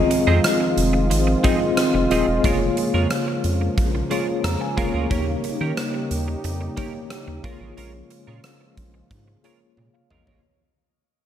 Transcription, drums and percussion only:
0.11 closed hi-hat
0.44 cross-stick, closed hi-hat
0.78 closed hi-hat
1.11 closed hi-hat
1.44 kick, closed hi-hat
1.77 cross-stick, closed hi-hat
2.11 closed hi-hat
2.44 kick, closed hi-hat
2.77 closed hi-hat
3.10 cross-stick, closed hi-hat
3.44 closed hi-hat
3.78 kick, closed hi-hat
4.11 closed hi-hat
4.44 cross-stick, closed hi-hat
4.78 kick, closed hi-hat
5.11 kick, closed hi-hat
5.44 closed hi-hat
5.77 cross-stick, closed hi-hat
6.11 closed hi-hat
6.44 closed hi-hat
6.77 kick, closed hi-hat
7.10 cross-stick, closed hi-hat
7.44 kick, closed hi-hat
7.78 closed hi-hat
8.10 closed hi-hat
8.44 cross-stick, closed hi-hat
8.77 kick, closed hi-hat
9.11 kick, closed hi-hat
9.44 closed hi-hat
9.77 high tom
10.11 mid tom
10.27 floor tom

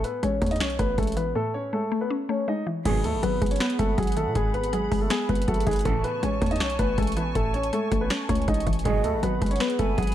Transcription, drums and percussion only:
0.04 closed hi-hat
0.23 closed hi-hat
0.42 kick, closed hi-hat
0.46 closed hi-hat
0.51 closed hi-hat
0.56 closed hi-hat
0.60 finger snap, snare, closed hi-hat
0.70 closed hi-hat
0.79 kick, closed hi-hat
0.98 kick, closed hi-hat
1.03 closed hi-hat
1.07 closed hi-hat
1.12 closed hi-hat
1.17 closed hi-hat
2.85 kick, closed hi-hat, crash
3.04 closed hi-hat
3.23 closed hi-hat
3.42 kick, closed hi-hat
3.46 closed hi-hat
3.51 closed hi-hat
3.56 closed hi-hat
3.60 finger snap, snare, closed hi-hat
3.70 closed hi-hat
3.79 kick, closed hi-hat
3.98 kick, closed hi-hat
4.03 closed hi-hat
4.07 closed hi-hat
4.12 closed hi-hat
4.17 closed hi-hat
4.35 kick, closed hi-hat
4.54 closed hi-hat
4.64 closed hi-hat
4.73 closed hi-hat
4.92 kick, open hi-hat
5.10 finger snap, snare, closed hi-hat
5.29 kick, closed hi-hat
5.35 closed hi-hat
5.42 closed hi-hat
5.48 kick, closed hi-hat
5.54 closed hi-hat
5.60 closed hi-hat
5.67 kick, closed hi-hat
5.71 closed hi-hat
5.73 closed hi-hat
5.76 closed hi-hat
5.79 closed hi-hat
5.81 closed hi-hat
5.85 kick, closed hi-hat
6.04 closed hi-hat
6.23 closed hi-hat
6.42 kick, closed hi-hat
6.46 closed hi-hat
6.51 closed hi-hat
6.56 closed hi-hat
6.60 finger snap, snare, closed hi-hat
6.70 closed hi-hat
6.79 kick, closed hi-hat
6.98 kick, closed hi-hat
7.03 closed hi-hat
7.07 closed hi-hat
7.12 closed hi-hat
7.17 closed hi-hat
7.35 kick, closed hi-hat
7.54 closed hi-hat
7.63 closed hi-hat
7.73 closed hi-hat
7.92 kick, closed hi-hat
8.10 finger snap, snare, closed hi-hat
8.29 kick, closed hi-hat
8.35 closed hi-hat
8.42 closed hi-hat
8.48 kick, closed hi-hat
8.54 closed hi-hat
8.60 closed hi-hat
8.67 kick, closed hi-hat
8.73 closed hi-hat
8.79 closed hi-hat
8.85 kick, closed hi-hat
9.04 closed hi-hat
9.23 closed hi-hat
9.42 kick, closed hi-hat
9.46 closed hi-hat
9.51 closed hi-hat
9.56 closed hi-hat
9.60 finger snap, snare, closed hi-hat
9.70 closed hi-hat
9.79 kick, closed hi-hat
9.98 kick, closed hi-hat
10.03 closed hi-hat
10.07 closed hi-hat

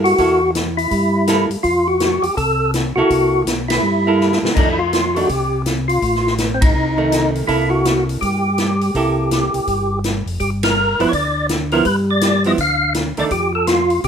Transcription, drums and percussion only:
0.05 open hi-hat
0.18 kick, open hi-hat
0.55 snare, closed hi-hat
0.78 open hi-hat
0.91 kick, open hi-hat
1.27 snare, closed hi-hat
1.51 open hi-hat
1.64 kick, open hi-hat
2.00 snare, closed hi-hat
2.23 open hi-hat
2.37 kick, open hi-hat
2.74 snare, closed hi-hat
3.10 kick, open hi-hat
3.47 snare, closed hi-hat
3.70 snare, ride
4.21 snare
4.32 snare
4.45 snare
4.56 kick, crash
4.93 snare, closed hi-hat
5.16 open hi-hat
5.29 kick, open hi-hat
5.66 snare, closed hi-hat
5.89 open hi-hat
6.02 kick, open hi-hat
6.15 snare
6.27 snare
6.38 snare, closed hi-hat
6.62 kick, ride
7.12 snare, closed hi-hat
7.35 open hi-hat
7.48 kick, open hi-hat
7.85 snare, closed hi-hat
8.09 open hi-hat
8.22 kick, open hi-hat
8.58 snare, closed hi-hat
8.81 open hi-hat
8.95 kick, open hi-hat
9.31 snare, closed hi-hat
9.54 open hi-hat
9.67 kick, open hi-hat
10.04 snare, closed hi-hat
10.27 open hi-hat
10.40 kick, open hi-hat
10.63 snare, ride
11.00 open hi-hat
11.13 kick, open hi-hat
11.49 snare, closed hi-hat
11.72 open hi-hat
11.85 kick, open hi-hat
12.21 snare, closed hi-hat
12.44 open hi-hat
12.58 kick, open hi-hat
12.94 snare, closed hi-hat
13.17 open hi-hat
13.31 kick, open hi-hat
13.67 snare, closed hi-hat
13.90 open hi-hat
14.04 kick, open hi-hat

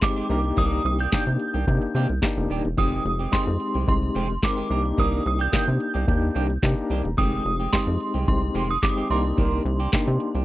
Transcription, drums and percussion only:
0.02 kick, snare, clap, closed hi-hat
0.30 closed hi-hat
0.44 closed hi-hat
0.57 kick, closed hi-hat
0.72 closed hi-hat
0.85 closed hi-hat
1.00 closed hi-hat
1.12 kick, snare, clap, closed hi-hat
1.27 closed hi-hat
1.39 closed hi-hat
1.54 closed hi-hat
1.67 kick, closed hi-hat
1.82 closed hi-hat
1.95 closed hi-hat
2.09 closed hi-hat
2.22 kick, snare, clap, closed hi-hat
2.50 open hi-hat
2.65 closed hi-hat
2.78 kick, closed hi-hat
3.06 closed hi-hat
3.20 closed hi-hat
3.33 kick, snare, clap, closed hi-hat
3.60 closed hi-hat
3.75 closed hi-hat
3.88 kick, closed hi-hat
4.16 closed hi-hat
4.30 closed hi-hat
4.43 kick, snare, clap, closed hi-hat
4.71 closed hi-hat
4.85 closed hi-hat
4.98 kick, closed hi-hat
5.26 closed hi-hat
5.40 closed hi-hat
5.53 kick, snare, clap, closed hi-hat
5.80 closed hi-hat
5.95 closed hi-hat
6.08 kick, closed hi-hat
6.36 closed hi-hat
6.50 closed hi-hat
6.63 kick, snare, clap, closed hi-hat
6.91 closed hi-hat
7.05 closed hi-hat
7.18 kick, closed hi-hat
7.46 closed hi-hat
7.60 closed hi-hat
7.73 kick, snare, clap, closed hi-hat
8.00 closed hi-hat
8.15 closed hi-hat
8.28 kick, closed hi-hat
8.56 closed hi-hat
8.70 closed hi-hat
8.83 kick, snare, clap, closed hi-hat
9.10 closed hi-hat
9.25 closed hi-hat
9.38 kick, closed hi-hat
9.53 closed hi-hat
9.66 closed hi-hat
9.80 closed hi-hat
9.93 kick, snare, clap, closed hi-hat
10.08 closed hi-hat
10.20 closed hi-hat
10.35 closed hi-hat

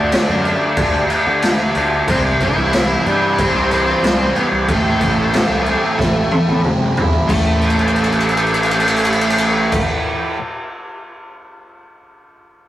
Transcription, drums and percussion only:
0.12 snare, crash
0.45 crash
0.77 kick, crash
1.10 crash
1.42 snare, crash
1.75 crash
2.08 kick, crash
2.40 kick, crash
2.73 snare, crash
3.06 crash
3.38 kick, crash
3.71 crash
4.04 snare, crash
4.36 crash
4.68 kick, crash
5.01 kick, crash
5.33 snare, crash
5.66 crash
5.99 kick, snare
6.31 high tom
6.48 high tom
6.64 mid tom
6.97 floor tom
7.13 floor tom
7.29 kick, crash
7.62 crash
7.70 ride
7.79 crash
7.88 ride
7.96 crash
8.04 ride
8.12 crash
8.20 ride
8.29 crash
8.37 ride
8.46 crash
8.54 ride
8.63 crash
8.71 ride
8.80 crash
8.88 ride
8.96 crash
9.05 ride
9.12 crash
9.21 ride
9.30 crash
9.38 ride
9.72 kick, crash

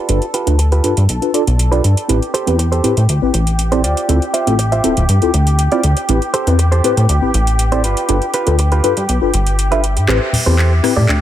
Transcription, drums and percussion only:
0.09 closed hi-hat
0.22 closed hi-hat
0.34 closed hi-hat
0.47 closed hi-hat
0.59 closed hi-hat
0.72 closed hi-hat
0.84 closed hi-hat
0.97 closed hi-hat
1.09 closed hi-hat
1.22 closed hi-hat
1.34 closed hi-hat
1.47 closed hi-hat
1.59 closed hi-hat
1.72 closed hi-hat
1.84 closed hi-hat
1.97 closed hi-hat
2.09 closed hi-hat
2.22 closed hi-hat
2.34 closed hi-hat
2.47 closed hi-hat
2.59 closed hi-hat
2.72 closed hi-hat
2.84 closed hi-hat
2.97 closed hi-hat
3.09 closed hi-hat
3.34 closed hi-hat
3.47 closed hi-hat
3.59 closed hi-hat
3.72 closed hi-hat
3.84 closed hi-hat
3.97 closed hi-hat
4.09 closed hi-hat
4.22 closed hi-hat
4.34 closed hi-hat
4.47 closed hi-hat
4.59 closed hi-hat
4.72 closed hi-hat
4.84 closed hi-hat
4.97 closed hi-hat
5.09 closed hi-hat
5.22 closed hi-hat
5.34 closed hi-hat
5.47 closed hi-hat
5.59 closed hi-hat
5.72 closed hi-hat
5.83 closed hi-hat
5.97 closed hi-hat
6.09 closed hi-hat
6.22 closed hi-hat
6.34 closed hi-hat
6.47 closed hi-hat
6.59 closed hi-hat
6.72 closed hi-hat
6.84 closed hi-hat
6.97 closed hi-hat
7.09 closed hi-hat
7.34 closed hi-hat
7.47 closed hi-hat
7.59 closed hi-hat
7.72 closed hi-hat
7.84 closed hi-hat
7.97 closed hi-hat
8.09 closed hi-hat
8.22 closed hi-hat
8.34 closed hi-hat
8.47 closed hi-hat
8.59 closed hi-hat
8.72 closed hi-hat
8.84 closed hi-hat
8.97 closed hi-hat
9.09 closed hi-hat
9.34 closed hi-hat
9.47 closed hi-hat
9.59 closed hi-hat
9.72 closed hi-hat
9.84 closed hi-hat
9.97 closed hi-hat
10.09 clap
10.33 open hi-hat, low conga, shaker
10.59 clap
10.84 cross-stick, open hi-hat
10.96 low conga, shaker
11.09 clap, shaker

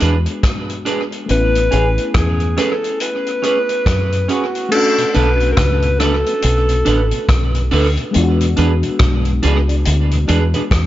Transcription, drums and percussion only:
0.00 closed hi-hat
0.26 closed hi-hat
0.43 kick, cross-stick, closed hi-hat
0.70 closed hi-hat
0.86 closed hi-hat
1.12 closed hi-hat
1.29 closed hi-hat
1.55 closed hi-hat
1.72 closed hi-hat
1.98 closed hi-hat
2.14 kick, cross-stick, closed hi-hat
2.40 closed hi-hat
2.57 cross-stick, closed hi-hat
2.84 closed hi-hat
3.00 closed hi-hat
3.26 closed hi-hat
3.43 closed hi-hat
3.69 closed hi-hat
3.86 kick, cross-stick, closed hi-hat
4.12 closed hi-hat
4.29 closed hi-hat
4.55 closed hi-hat
4.72 crash
4.98 closed hi-hat
5.14 closed hi-hat
5.40 closed hi-hat
5.57 kick, cross-stick, closed hi-hat
5.82 closed hi-hat
6.00 cross-stick, closed hi-hat
6.26 closed hi-hat
6.42 closed hi-hat
6.69 closed hi-hat
6.86 closed hi-hat
7.11 closed hi-hat
7.29 kick, cross-stick, closed hi-hat
7.55 closed hi-hat
7.71 open hi-hat
7.97 closed hi-hat
8.14 closed hi-hat
8.41 closed hi-hat
8.57 closed hi-hat
8.83 closed hi-hat
8.99 kick, cross-stick, closed hi-hat
9.25 closed hi-hat
9.43 closed hi-hat
9.69 closed hi-hat
9.85 closed hi-hat
10.11 closed hi-hat
10.28 closed hi-hat
10.54 closed hi-hat
10.71 kick, cross-stick, closed hi-hat

